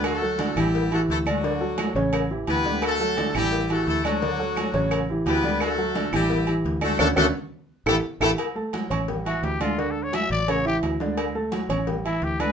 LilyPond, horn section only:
\new Staff \with { instrumentName = "Horn section" } { \time 4/4 \key a \mixolydian \tempo 4 = 172 << { <a a'>4. <g g'>4 <a a'>8 <a a'>8 <fis fis'>8~ | <fis fis'>4. r4. <b b'>4 | <a a'>4. <g g'>4 <a a'>8 <a a'>8 <fis fis'>8~ | <fis fis'>2~ <fis fis'>8 r8 <b b'>4 |
<a a'>4. <g g'>4 r4 <a a'>8 | <a d' fis' a'>8 <a d' fis' a'>8 r4. <a e' g' a'>8 r8 <a e' g' a'>8 | r1 | r1 |
r1 | } \\ { fis'4. e'4 fis'8 e'8 d'8~ | d'4. r4. g'4 | fis'4. e'4 fis'8 e'8 d'8~ | d'2 r4 g'4 |
fis'4. e'4 r4 fis'8 | r1 | r1 | r1 |
r1 | } >> }